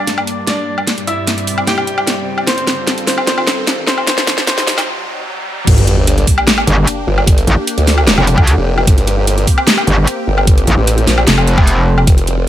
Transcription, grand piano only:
0, 0, Header, 1, 2, 480
1, 0, Start_track
1, 0, Key_signature, -2, "minor"
1, 0, Tempo, 400000
1, 1049, Time_signature, 4, 2, 24, 8
1, 14980, End_track
2, 0, Start_track
2, 0, Title_t, "Grand piano"
2, 0, Program_c, 0, 0
2, 0, Note_on_c, 0, 62, 73
2, 0, Note_on_c, 0, 74, 88
2, 475, Note_off_c, 0, 74, 0
2, 476, Note_off_c, 0, 62, 0
2, 569, Note_on_c, 0, 62, 70
2, 569, Note_on_c, 0, 74, 88
2, 1196, Note_off_c, 0, 62, 0
2, 1196, Note_off_c, 0, 74, 0
2, 1289, Note_on_c, 0, 64, 74
2, 1289, Note_on_c, 0, 76, 89
2, 1915, Note_off_c, 0, 64, 0
2, 1916, Note_off_c, 0, 76, 0
2, 2009, Note_on_c, 0, 67, 77
2, 2009, Note_on_c, 0, 79, 96
2, 2876, Note_off_c, 0, 67, 0
2, 2876, Note_off_c, 0, 79, 0
2, 2967, Note_on_c, 0, 60, 68
2, 2968, Note_on_c, 0, 72, 91
2, 3595, Note_off_c, 0, 60, 0
2, 3595, Note_off_c, 0, 72, 0
2, 3688, Note_on_c, 0, 60, 66
2, 3688, Note_on_c, 0, 72, 83
2, 3910, Note_off_c, 0, 60, 0
2, 3910, Note_off_c, 0, 72, 0
2, 3928, Note_on_c, 0, 60, 76
2, 3928, Note_on_c, 0, 72, 98
2, 4555, Note_off_c, 0, 60, 0
2, 4555, Note_off_c, 0, 72, 0
2, 4648, Note_on_c, 0, 60, 76
2, 4648, Note_on_c, 0, 72, 92
2, 4869, Note_off_c, 0, 60, 0
2, 4870, Note_off_c, 0, 72, 0
2, 4888, Note_on_c, 0, 60, 78
2, 4888, Note_on_c, 0, 72, 99
2, 5350, Note_off_c, 0, 60, 0
2, 5350, Note_off_c, 0, 72, 0
2, 5368, Note_on_c, 0, 60, 74
2, 5369, Note_on_c, 0, 72, 101
2, 5830, Note_off_c, 0, 60, 0
2, 5830, Note_off_c, 0, 72, 0
2, 14980, End_track
0, 0, End_of_file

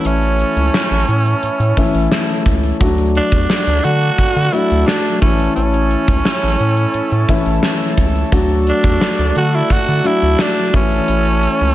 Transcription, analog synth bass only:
0, 0, Header, 1, 2, 480
1, 0, Start_track
1, 0, Key_signature, 2, "major"
1, 0, Tempo, 689655
1, 36, Time_signature, 4, 2, 24, 8
1, 8176, End_track
2, 0, Start_track
2, 0, Title_t, "Analog synth bass"
2, 0, Program_c, 0, 38
2, 34, Note_on_c, 0, 33, 102
2, 305, Note_off_c, 0, 33, 0
2, 391, Note_on_c, 0, 37, 79
2, 483, Note_off_c, 0, 37, 0
2, 633, Note_on_c, 0, 33, 92
2, 724, Note_off_c, 0, 33, 0
2, 753, Note_on_c, 0, 45, 101
2, 934, Note_off_c, 0, 45, 0
2, 994, Note_on_c, 0, 45, 45
2, 1043, Note_off_c, 0, 45, 0
2, 1110, Note_on_c, 0, 45, 99
2, 1202, Note_off_c, 0, 45, 0
2, 1352, Note_on_c, 0, 33, 81
2, 1444, Note_off_c, 0, 33, 0
2, 1711, Note_on_c, 0, 37, 87
2, 1893, Note_off_c, 0, 37, 0
2, 1954, Note_on_c, 0, 38, 106
2, 2225, Note_off_c, 0, 38, 0
2, 2311, Note_on_c, 0, 40, 75
2, 2403, Note_off_c, 0, 40, 0
2, 2553, Note_on_c, 0, 38, 92
2, 2644, Note_off_c, 0, 38, 0
2, 2676, Note_on_c, 0, 50, 99
2, 2856, Note_off_c, 0, 50, 0
2, 2911, Note_on_c, 0, 50, 46
2, 2960, Note_off_c, 0, 50, 0
2, 3036, Note_on_c, 0, 50, 93
2, 3126, Note_off_c, 0, 50, 0
2, 3279, Note_on_c, 0, 38, 83
2, 3368, Note_off_c, 0, 38, 0
2, 3633, Note_on_c, 0, 33, 98
2, 3814, Note_off_c, 0, 33, 0
2, 3875, Note_on_c, 0, 33, 104
2, 4146, Note_off_c, 0, 33, 0
2, 4231, Note_on_c, 0, 37, 85
2, 4323, Note_off_c, 0, 37, 0
2, 4476, Note_on_c, 0, 33, 91
2, 4566, Note_off_c, 0, 33, 0
2, 4593, Note_on_c, 0, 45, 100
2, 4774, Note_off_c, 0, 45, 0
2, 4831, Note_on_c, 0, 45, 48
2, 4880, Note_off_c, 0, 45, 0
2, 4954, Note_on_c, 0, 45, 95
2, 5045, Note_off_c, 0, 45, 0
2, 5191, Note_on_c, 0, 33, 82
2, 5283, Note_off_c, 0, 33, 0
2, 5551, Note_on_c, 0, 37, 94
2, 5733, Note_off_c, 0, 37, 0
2, 5793, Note_on_c, 0, 38, 106
2, 6064, Note_off_c, 0, 38, 0
2, 6152, Note_on_c, 0, 40, 82
2, 6243, Note_off_c, 0, 40, 0
2, 6394, Note_on_c, 0, 38, 88
2, 6485, Note_off_c, 0, 38, 0
2, 6516, Note_on_c, 0, 50, 100
2, 6696, Note_off_c, 0, 50, 0
2, 6752, Note_on_c, 0, 50, 47
2, 6801, Note_off_c, 0, 50, 0
2, 6878, Note_on_c, 0, 50, 90
2, 6967, Note_off_c, 0, 50, 0
2, 7116, Note_on_c, 0, 38, 85
2, 7206, Note_off_c, 0, 38, 0
2, 7473, Note_on_c, 0, 33, 93
2, 7654, Note_off_c, 0, 33, 0
2, 7715, Note_on_c, 0, 33, 100
2, 7985, Note_off_c, 0, 33, 0
2, 8080, Note_on_c, 0, 37, 87
2, 8169, Note_off_c, 0, 37, 0
2, 8176, End_track
0, 0, End_of_file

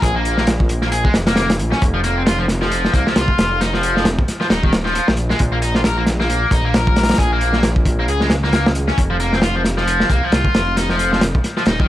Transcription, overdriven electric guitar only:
0, 0, Header, 1, 2, 480
1, 0, Start_track
1, 0, Key_signature, -4, "minor"
1, 0, Tempo, 447761
1, 26, Time_signature, 4, 2, 24, 8
1, 12735, End_track
2, 0, Start_track
2, 0, Title_t, "Overdriven electric guitar"
2, 0, Program_c, 0, 29
2, 22, Note_on_c, 0, 68, 77
2, 149, Note_off_c, 0, 68, 0
2, 161, Note_on_c, 0, 58, 81
2, 388, Note_off_c, 0, 58, 0
2, 408, Note_on_c, 0, 58, 96
2, 495, Note_off_c, 0, 58, 0
2, 883, Note_on_c, 0, 58, 93
2, 937, Note_off_c, 0, 58, 0
2, 987, Note_on_c, 0, 68, 84
2, 1111, Note_off_c, 0, 68, 0
2, 1119, Note_on_c, 0, 56, 101
2, 1211, Note_off_c, 0, 56, 0
2, 1361, Note_on_c, 0, 58, 98
2, 1452, Note_off_c, 0, 58, 0
2, 1463, Note_on_c, 0, 58, 82
2, 1586, Note_off_c, 0, 58, 0
2, 1841, Note_on_c, 0, 61, 76
2, 1932, Note_off_c, 0, 61, 0
2, 2081, Note_on_c, 0, 53, 77
2, 2136, Note_off_c, 0, 53, 0
2, 2187, Note_on_c, 0, 58, 74
2, 2318, Note_off_c, 0, 58, 0
2, 2329, Note_on_c, 0, 60, 70
2, 2380, Note_off_c, 0, 60, 0
2, 2428, Note_on_c, 0, 65, 81
2, 2551, Note_off_c, 0, 65, 0
2, 2566, Note_on_c, 0, 53, 95
2, 2618, Note_off_c, 0, 53, 0
2, 2807, Note_on_c, 0, 53, 70
2, 3137, Note_off_c, 0, 53, 0
2, 3146, Note_on_c, 0, 58, 76
2, 3277, Note_off_c, 0, 58, 0
2, 3289, Note_on_c, 0, 53, 96
2, 3376, Note_off_c, 0, 53, 0
2, 3386, Note_on_c, 0, 65, 78
2, 3855, Note_off_c, 0, 65, 0
2, 3867, Note_on_c, 0, 63, 84
2, 3991, Note_off_c, 0, 63, 0
2, 4004, Note_on_c, 0, 53, 80
2, 4230, Note_off_c, 0, 53, 0
2, 4246, Note_on_c, 0, 53, 98
2, 4334, Note_off_c, 0, 53, 0
2, 4723, Note_on_c, 0, 53, 97
2, 4777, Note_off_c, 0, 53, 0
2, 4828, Note_on_c, 0, 63, 83
2, 4952, Note_off_c, 0, 63, 0
2, 4965, Note_on_c, 0, 51, 97
2, 5054, Note_off_c, 0, 51, 0
2, 5203, Note_on_c, 0, 53, 102
2, 5293, Note_off_c, 0, 53, 0
2, 5308, Note_on_c, 0, 53, 84
2, 5429, Note_off_c, 0, 53, 0
2, 5686, Note_on_c, 0, 56, 76
2, 5774, Note_off_c, 0, 56, 0
2, 5923, Note_on_c, 0, 58, 80
2, 5977, Note_off_c, 0, 58, 0
2, 6027, Note_on_c, 0, 63, 75
2, 6158, Note_off_c, 0, 63, 0
2, 6167, Note_on_c, 0, 65, 74
2, 6219, Note_off_c, 0, 65, 0
2, 6266, Note_on_c, 0, 70, 81
2, 6390, Note_off_c, 0, 70, 0
2, 6404, Note_on_c, 0, 58, 104
2, 6458, Note_off_c, 0, 58, 0
2, 6645, Note_on_c, 0, 58, 72
2, 6976, Note_off_c, 0, 58, 0
2, 6987, Note_on_c, 0, 63, 76
2, 7118, Note_off_c, 0, 63, 0
2, 7128, Note_on_c, 0, 58, 101
2, 7215, Note_off_c, 0, 58, 0
2, 7226, Note_on_c, 0, 70, 85
2, 7695, Note_off_c, 0, 70, 0
2, 7705, Note_on_c, 0, 68, 81
2, 7830, Note_off_c, 0, 68, 0
2, 7849, Note_on_c, 0, 58, 79
2, 8073, Note_off_c, 0, 58, 0
2, 8090, Note_on_c, 0, 58, 99
2, 8176, Note_off_c, 0, 58, 0
2, 8567, Note_on_c, 0, 58, 100
2, 8619, Note_off_c, 0, 58, 0
2, 8669, Note_on_c, 0, 68, 83
2, 8792, Note_off_c, 0, 68, 0
2, 8802, Note_on_c, 0, 56, 99
2, 8892, Note_off_c, 0, 56, 0
2, 9043, Note_on_c, 0, 58, 101
2, 9133, Note_off_c, 0, 58, 0
2, 9145, Note_on_c, 0, 58, 82
2, 9267, Note_off_c, 0, 58, 0
2, 9517, Note_on_c, 0, 61, 77
2, 9610, Note_off_c, 0, 61, 0
2, 9759, Note_on_c, 0, 53, 82
2, 9815, Note_off_c, 0, 53, 0
2, 9862, Note_on_c, 0, 58, 74
2, 9996, Note_off_c, 0, 58, 0
2, 10001, Note_on_c, 0, 60, 75
2, 10056, Note_off_c, 0, 60, 0
2, 10105, Note_on_c, 0, 65, 79
2, 10230, Note_off_c, 0, 65, 0
2, 10241, Note_on_c, 0, 53, 104
2, 10296, Note_off_c, 0, 53, 0
2, 10481, Note_on_c, 0, 53, 73
2, 10814, Note_off_c, 0, 53, 0
2, 10825, Note_on_c, 0, 58, 78
2, 10957, Note_off_c, 0, 58, 0
2, 10967, Note_on_c, 0, 53, 99
2, 11055, Note_off_c, 0, 53, 0
2, 11064, Note_on_c, 0, 65, 84
2, 11535, Note_off_c, 0, 65, 0
2, 11545, Note_on_c, 0, 63, 78
2, 11670, Note_off_c, 0, 63, 0
2, 11681, Note_on_c, 0, 53, 81
2, 11909, Note_off_c, 0, 53, 0
2, 11922, Note_on_c, 0, 53, 94
2, 12012, Note_off_c, 0, 53, 0
2, 12404, Note_on_c, 0, 53, 101
2, 12458, Note_off_c, 0, 53, 0
2, 12507, Note_on_c, 0, 63, 86
2, 12631, Note_off_c, 0, 63, 0
2, 12644, Note_on_c, 0, 51, 98
2, 12733, Note_off_c, 0, 51, 0
2, 12735, End_track
0, 0, End_of_file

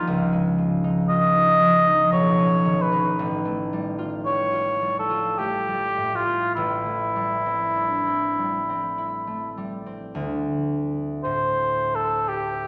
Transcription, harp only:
0, 0, Header, 1, 2, 480
1, 0, Start_track
1, 0, Tempo, 1030928
1, 30, Time_signature, 3, 2, 24, 8
1, 990, Tempo, 1067616
1, 1950, Tempo, 1117318
1, 2430, Tempo, 1190476
1, 4350, Tempo, 1102941
1, 4830, Tempo, 1048951
1, 5485, End_track
2, 0, Start_track
2, 0, Title_t, "Harp"
2, 0, Program_c, 0, 46
2, 0, Note_on_c, 0, 39, 54
2, 0, Note_on_c, 0, 53, 43
2, 0, Note_on_c, 0, 55, 43
2, 0, Note_on_c, 0, 63, 49
2, 34, Note_on_c, 0, 37, 57
2, 48, Note_off_c, 0, 39, 0
2, 51, Note_off_c, 0, 55, 0
2, 151, Note_on_c, 0, 56, 42
2, 264, Note_off_c, 0, 53, 0
2, 270, Note_on_c, 0, 53, 40
2, 385, Note_off_c, 0, 63, 0
2, 391, Note_on_c, 0, 63, 48
2, 513, Note_on_c, 0, 65, 38
2, 626, Note_off_c, 0, 63, 0
2, 631, Note_on_c, 0, 63, 42
2, 715, Note_off_c, 0, 65, 0
2, 741, Note_off_c, 0, 53, 0
2, 747, Note_on_c, 0, 53, 45
2, 864, Note_off_c, 0, 63, 0
2, 869, Note_on_c, 0, 63, 55
2, 986, Note_on_c, 0, 35, 52
2, 1009, Note_off_c, 0, 53, 0
2, 1011, Note_off_c, 0, 56, 0
2, 1012, Note_off_c, 0, 37, 0
2, 1108, Note_on_c, 0, 61, 48
2, 1225, Note_on_c, 0, 51, 47
2, 1341, Note_off_c, 0, 63, 0
2, 1347, Note_on_c, 0, 63, 54
2, 1469, Note_on_c, 0, 33, 64
2, 1485, Note_off_c, 0, 35, 0
2, 1486, Note_off_c, 0, 51, 0
2, 1487, Note_off_c, 0, 63, 0
2, 1585, Note_on_c, 0, 57, 46
2, 1710, Note_on_c, 0, 55, 44
2, 1825, Note_on_c, 0, 65, 47
2, 1951, Note_on_c, 0, 67, 37
2, 2058, Note_off_c, 0, 65, 0
2, 2064, Note_on_c, 0, 65, 40
2, 2152, Note_off_c, 0, 67, 0
2, 2184, Note_off_c, 0, 55, 0
2, 2189, Note_on_c, 0, 55, 43
2, 2306, Note_off_c, 0, 65, 0
2, 2311, Note_on_c, 0, 65, 47
2, 2428, Note_off_c, 0, 57, 0
2, 2433, Note_on_c, 0, 57, 44
2, 2547, Note_off_c, 0, 55, 0
2, 2552, Note_on_c, 0, 55, 45
2, 2668, Note_on_c, 0, 45, 40
2, 2782, Note_off_c, 0, 65, 0
2, 2787, Note_on_c, 0, 65, 44
2, 2797, Note_off_c, 0, 61, 0
2, 2903, Note_off_c, 0, 33, 0
2, 2908, Note_on_c, 0, 33, 53
2, 2926, Note_off_c, 0, 45, 0
2, 2926, Note_off_c, 0, 65, 0
2, 3022, Note_off_c, 0, 57, 0
2, 3026, Note_on_c, 0, 57, 39
2, 3142, Note_off_c, 0, 55, 0
2, 3147, Note_on_c, 0, 55, 36
2, 3267, Note_on_c, 0, 60, 38
2, 3390, Note_on_c, 0, 62, 34
2, 3509, Note_off_c, 0, 60, 0
2, 3514, Note_on_c, 0, 60, 38
2, 3599, Note_off_c, 0, 62, 0
2, 3637, Note_off_c, 0, 55, 0
2, 3642, Note_on_c, 0, 55, 36
2, 3761, Note_off_c, 0, 60, 0
2, 3766, Note_on_c, 0, 60, 44
2, 3881, Note_on_c, 0, 64, 39
2, 3995, Note_off_c, 0, 57, 0
2, 4000, Note_on_c, 0, 57, 37
2, 4117, Note_off_c, 0, 55, 0
2, 4122, Note_on_c, 0, 55, 38
2, 4233, Note_off_c, 0, 60, 0
2, 4238, Note_on_c, 0, 60, 40
2, 4353, Note_on_c, 0, 38, 54
2, 4371, Note_off_c, 0, 33, 0
2, 4832, Note_on_c, 0, 45, 44
2, 5485, Note_off_c, 0, 38, 0
2, 5485, Note_off_c, 0, 45, 0
2, 5485, Note_off_c, 0, 55, 0
2, 5485, Note_off_c, 0, 57, 0
2, 5485, Note_off_c, 0, 60, 0
2, 5485, Note_off_c, 0, 64, 0
2, 5485, End_track
0, 0, End_of_file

